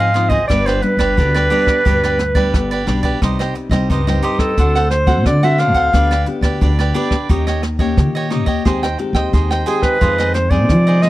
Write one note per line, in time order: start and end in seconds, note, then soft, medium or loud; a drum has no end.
0.00 0.31 G#2 medium
0.00 0.46 G#2 soft
0.00 0.14 G#4 medium
0.00 0.14 C5 medium
0.00 0.14 D#5 medium
0.00 0.31 F5 medium
0.14 0.37 F3 soft
0.14 0.37 C4 soft
0.14 0.38 D#4 soft
0.14 0.30 F4 soft
0.14 0.30 G#4 soft
0.14 0.29 C5 soft
0.14 0.28 D#5 medium
0.14 cross-stick soft
0.14 closed hi-hat soft
0.29 0.45 G#1 medium
0.29 0.48 G#4 medium
0.29 0.47 C5 medium
0.29 0.47 D#5 medium
0.29 kick medium
0.29 closed hi-hat soft
0.48 0.79 G1 medium
0.48 1.14 G2 medium
0.48 0.78 G3 soft
0.48 0.79 B3 soft
0.48 0.65 D4 soft
0.48 0.79 D4 medium
0.48 0.65 G4 soft
0.48 0.65 B4 soft
0.48 0.68 D5 medium
0.48 0.65 D5 soft
0.48 kick medium
0.48 cross-stick medium
0.48 closed hi-hat medium
0.66 0.81 G4 soft
0.66 0.82 B4 medium
0.66 0.83 C5 medium
0.66 0.82 D5 medium
0.66 cross-stick medium
0.82 1.46 G3 medium
0.82 1.46 B3 soft
0.82 1.46 D4 medium
0.82 2.87 B4 medium
0.82 muted cavaquinho stroke soft
0.82 closed hi-hat soft
0.97 1.19 G1 medium
0.97 1.16 G4 soft
0.97 1.16 B4 medium
0.97 1.15 D5 medium
0.97 kick medium
0.97 cross-stick medium
1.17 1.47 D2 medium
1.17 1.82 D3 medium
1.17 1.33 D4 soft
1.17 1.33 G4 soft
1.17 1.34 B4 soft
1.17 1.33 D5 medium
1.17 kick medium
1.17 closed hi-hat medium
1.34 1.50 G4 soft
1.34 1.50 B4 medium
1.34 1.50 D5 medium
1.34 cross-stick medium
1.34 closed hi-hat soft
1.50 1.80 G3 medium
1.50 1.80 B3 soft
1.50 1.84 D4 medium
1.50 1.80 D4 medium
1.50 1.84 G4 medium
1.50 1.84 B4 medium
1.50 1.85 D5 medium
1.50 closed hi-hat soft
1.67 kick medium
1.67 cross-stick medium
1.67 closed hi-hat soft
1.85 2.53 D2 medium
1.85 2.51 G2 soft
1.85 2.18 G3 soft
1.85 2.18 B3 soft
1.85 2.01 D4 soft
1.85 2.18 D4 soft
1.85 2.01 G4 medium
1.85 2.02 B4 soft
1.85 2.02 D5 medium
1.85 kick medium
1.85 closed hi-hat medium
2.03 2.18 G4 medium
2.03 2.18 B4 medium
2.03 2.19 D5 medium
2.03 cross-stick medium
2.03 closed hi-hat soft
2.19 muted cavaquinho stroke soft
2.19 cross-stick medium
2.19 closed hi-hat soft
2.35 2.81 G3 medium
2.35 2.82 B3 medium
2.35 2.82 D4 medium
2.35 2.69 G4 soft
2.35 2.69 B4 medium
2.35 2.68 D5 medium
2.35 kick medium
2.35 closed hi-hat soft
2.54 2.84 G1 medium
2.54 3.18 D3 soft
2.54 kick medium
2.54 cross-stick medium
2.54 closed hi-hat medium
2.71 2.86 G4 soft
2.71 2.87 B4 medium
2.71 2.86 D5 medium
2.71 closed hi-hat soft
2.87 3.18 B1 medium
2.87 3.19 G3 soft
2.87 3.19 B3 soft
2.87 3.03 D4 soft
2.87 3.19 D4 soft
2.87 3.03 G4 soft
2.87 3.03 B4 soft
2.87 3.02 D5 soft
2.87 cross-stick medium
2.87 closed hi-hat soft
3.03 3.20 G4 medium
3.03 3.20 B4 medium
3.03 3.19 D5 medium
3.03 kick medium
3.22 3.51 C2 medium
3.22 3.87 C3 soft
3.22 3.68 G3 medium
3.22 3.68 C4 soft
3.22 3.37 D#4 soft
3.22 3.68 D#4 soft
3.22 3.38 G4 soft
3.22 3.38 C5 soft
3.22 3.38 D#5 medium
3.22 kick medium
3.22 cross-stick medium
3.22 closed hi-hat medium
3.39 3.54 G4 medium
3.39 3.55 C5 medium
3.39 3.55 D#5 medium
3.39 cross-stick medium
3.39 closed hi-hat soft
3.55 muted cavaquinho stroke soft
3.55 closed hi-hat soft
3.70 3.90 C2 medium
3.70 4.00 G3 medium
3.70 4.01 C4 medium
3.70 4.01 D#4 medium
3.70 3.88 G4 soft
3.70 3.88 C5 soft
3.70 3.87 D#5 medium
3.70 kick medium
3.70 cross-stick medium
3.70 closed hi-hat soft
3.90 4.19 C#2 medium
3.90 4.54 G2 soft
3.90 4.05 D#4 soft
3.90 4.06 G4 soft
3.90 4.06 C5 soft
3.90 4.06 D#5 soft
3.90 kick medium
3.90 closed hi-hat medium
4.07 4.53 G3 soft
4.07 4.53 C4 medium
4.07 4.53 D#4 medium
4.07 4.22 G4 soft
4.07 4.23 C5 medium
4.07 4.23 D#5 medium
4.07 cross-stick medium
4.07 closed hi-hat soft
4.23 4.56 D#4 medium
4.23 4.41 G4 medium
4.23 4.56 G4 medium
4.23 4.56 C5 medium
4.23 4.57 D#5 medium
4.23 closed hi-hat soft
4.39 4.90 A4 medium
4.39 kick medium
4.39 cross-stick medium
4.58 5.26 D2 medium
4.58 5.22 D3 soft
4.58 4.90 A3 soft
4.58 4.90 C4 soft
4.58 4.73 D4 soft
4.58 4.90 F#4 soft
4.58 4.74 A4 medium
4.58 4.74 C5 soft
4.58 4.74 F#5 soft
4.58 kick medium
4.58 closed hi-hat medium
4.75 4.90 A4 soft
4.75 4.90 C5 medium
4.75 4.91 F#5 medium
4.75 cross-stick medium
4.75 closed hi-hat soft
4.91 5.23 C5 medium
4.91 muted cavaquinho stroke soft
4.91 cross-stick medium
4.91 closed hi-hat soft
5.07 5.36 A3 medium
5.07 5.36 C4 medium
5.07 5.37 F#4 medium
5.07 5.41 A4 soft
5.07 5.41 C5 medium
5.07 5.41 F#5 medium
5.07 kick medium
5.25 5.90 A2 soft
5.25 5.73 D3 loud
5.25 5.46 D5 medium
5.25 kick medium
5.25 cross-stick medium
5.25 closed hi-hat medium
5.43 5.88 A3 medium
5.43 5.89 C4 medium
5.43 5.89 F#4 medium
5.43 5.58 A4 soft
5.43 5.58 C5 medium
5.43 5.61 E5 medium
5.43 5.58 F#5 medium
5.58 5.75 D4 soft
5.58 5.75 A4 soft
5.58 5.74 C5 soft
5.58 6.28 F5 loud
5.58 5.73 F#5 soft
5.58 cross-stick medium
5.58 closed hi-hat soft
5.73 5.89 D2 medium
5.73 5.92 A4 medium
5.73 5.92 C5 medium
5.73 5.91 F#5 medium
5.73 kick medium
5.73 closed hi-hat soft
5.93 6.23 D2 medium
5.93 6.58 D3 soft
5.93 6.14 B3 medium
5.93 6.09 D4 soft
5.93 6.14 D4 soft
5.93 6.09 G4 soft
5.93 6.14 G4 medium
5.93 6.10 B4 soft
5.93 6.10 D5 medium
5.93 kick medium
5.93 cross-stick medium
5.93 closed hi-hat medium
6.11 6.25 G4 soft
6.11 6.26 B4 medium
6.11 6.26 D5 medium
6.11 cross-stick medium
6.26 6.71 B3 medium
6.26 6.71 D4 soft
6.26 6.71 G4 soft
6.26 muted cavaquinho stroke soft
6.26 closed hi-hat soft
6.41 6.57 D2 medium
6.41 6.60 G4 soft
6.41 6.60 B4 medium
6.41 6.59 D5 medium
6.41 kick medium
6.41 cross-stick medium
6.61 6.91 D2 medium
6.61 7.26 D3 medium
6.61 6.77 D4 soft
6.61 6.77 G4 soft
6.61 6.78 B4 medium
6.61 6.78 D5 medium
6.61 kick medium
6.61 closed hi-hat medium
6.79 6.94 G4 medium
6.79 6.94 B4 medium
6.79 6.94 D5 medium
6.79 cross-stick medium
6.79 closed hi-hat soft
6.94 7.15 B3 medium
6.94 7.28 D4 medium
6.94 7.15 D4 medium
6.94 7.28 G4 medium
6.94 7.15 G4 medium
6.94 7.28 B4 medium
6.94 7.29 D5 medium
6.94 closed hi-hat soft
7.11 kick medium
7.11 cross-stick medium
7.11 closed hi-hat soft
7.29 7.99 D#2 medium
7.29 7.94 D#3 soft
7.29 7.62 A#3 medium
7.29 7.62 C#4 soft
7.29 7.45 D#4 medium
7.29 7.45 G4 soft
7.29 7.62 G4 medium
7.29 7.46 C#5 medium
7.29 7.46 D#5 medium
7.29 kick medium
7.29 closed hi-hat medium
7.47 7.62 G4 medium
7.47 7.62 C#5 medium
7.47 7.62 D#5 medium
7.47 cross-stick medium
7.47 closed hi-hat soft
7.63 muted cavaquinho stroke soft
7.63 cross-stick medium
7.63 closed hi-hat soft
7.79 8.25 A#3 medium
7.79 8.26 C#4 medium
7.79 8.26 G4 medium
7.79 8.13 G4 soft
7.79 8.13 C#5 medium
7.79 8.12 D#5 medium
7.79 kick medium
7.79 closed hi-hat soft
7.97 8.62 A#2 soft
7.97 8.45 D#3 medium
7.97 kick medium
7.97 cross-stick medium
7.97 closed hi-hat medium
8.15 8.30 G4 soft
8.15 8.30 C#5 medium
8.15 8.30 D#5 medium
8.30 8.62 A#3 soft
8.30 8.63 C#4 soft
8.30 8.47 D#4 soft
8.30 8.47 G4 soft
8.30 8.63 G4 medium
8.30 8.46 C#5 soft
8.30 8.45 D#5 soft
8.30 cross-stick medium
8.30 closed hi-hat soft
8.45 8.61 D#2 medium
8.45 8.64 G4 medium
8.45 8.64 C#5 medium
8.45 8.63 D#5 medium
8.45 kick medium
8.65 8.95 D#2 medium
8.65 9.30 D#3 soft
8.65 8.86 G#3 medium
8.65 8.86 C4 medium
8.65 8.86 G4 medium
8.65 8.81 G#4 soft
8.65 8.82 C5 soft
8.65 8.82 D#5 medium
8.65 8.82 G5 medium
8.65 kick medium
8.65 cross-stick medium
8.65 closed hi-hat medium
8.83 8.98 C5 medium
8.83 8.98 D#5 medium
8.83 8.98 G5 medium
8.83 cross-stick medium
8.83 closed hi-hat soft
8.98 9.62 G#3 soft
8.98 9.62 C4 soft
8.98 9.62 G4 medium
8.98 muted cavaquinho stroke soft
8.98 closed hi-hat soft
9.13 9.29 D#2 medium
9.13 9.32 C5 medium
9.13 9.32 D#5 medium
9.13 9.31 G5 medium
9.13 kick medium
9.13 cross-stick medium
9.13 closed hi-hat soft
9.33 9.62 D#2 medium
9.33 9.98 D#3 soft
9.33 9.49 G#4 soft
9.33 9.49 C5 soft
9.33 9.50 D#5 medium
9.33 9.49 G5 medium
9.33 kick medium
9.33 closed hi-hat medium
9.51 9.66 C5 medium
9.51 9.66 D#5 medium
9.51 9.66 G5 medium
9.51 cross-stick medium
9.51 closed hi-hat soft
9.66 9.96 G#3 soft
9.66 9.96 C4 medium
9.66 9.96 G4 medium
9.66 10.00 G#4 medium
9.66 9.84 G#4 medium
9.66 10.00 C5 medium
9.66 10.00 D#5 medium
9.66 10.00 G5 medium
9.66 closed hi-hat soft
9.82 10.34 B4 medium
9.82 kick medium
9.82 cross-stick medium
10.01 10.70 F2 loud
10.01 10.66 F2 soft
10.01 10.47 D#3 medium
10.01 10.47 G#3 soft
10.01 10.48 C4 medium
10.01 10.17 F4 medium
10.01 10.17 G#4 medium
10.01 10.18 C5 medium
10.01 10.17 D#5 medium
10.01 kick medium
10.01 closed hi-hat medium
10.18 10.33 G#4 soft
10.18 10.34 C5 medium
10.18 10.34 D#5 medium
10.18 cross-stick medium
10.18 closed hi-hat soft
10.34 10.52 C5 medium
10.34 muted cavaquinho stroke soft
10.34 cross-stick medium
10.34 closed hi-hat soft
10.50 10.97 D#3 medium
10.50 10.98 G#3 medium
10.50 10.98 C4 medium
10.50 10.85 G#4 soft
10.50 10.84 C5 medium
10.50 11.03 D5 medium
10.50 kick medium
10.69 11.09 C3 soft
10.69 11.09 F3 medium
10.69 kick medium
10.69 cross-stick medium
10.69 closed hi-hat medium
10.87 11.02 G#4 medium
10.87 11.03 C5 medium
10.87 11.02 D#5 medium
11.02 11.09 D#3 soft
11.02 11.09 G#3 soft
11.02 11.09 C4 medium
11.02 11.09 F4 soft
11.02 11.09 G#4 soft
11.02 11.09 C5 soft
11.02 11.09 D#5 loud
11.02 11.09 D#5 medium
11.02 cross-stick medium
11.02 closed hi-hat soft